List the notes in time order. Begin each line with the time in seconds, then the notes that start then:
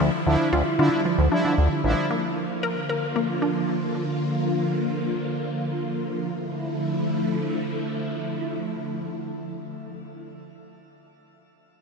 Already playing: D3 F3 E4, downlifter
0.00 D2 F3 G3
0.26 D2 F3 D4 E4
0.53 D2 F4
0.79 D3 F3 D4 E4 F4
1.05 F3
1.18 D2
1.32 F3 D4 E4
1.45 D3
1.58 D2
1.84 A1 F3 D4 E4
2.10 D3 A#3 F4
2.63 A#4
2.89 A#4
3.16 A#3
3.42 D4
6.31 D3 F3 A3 E4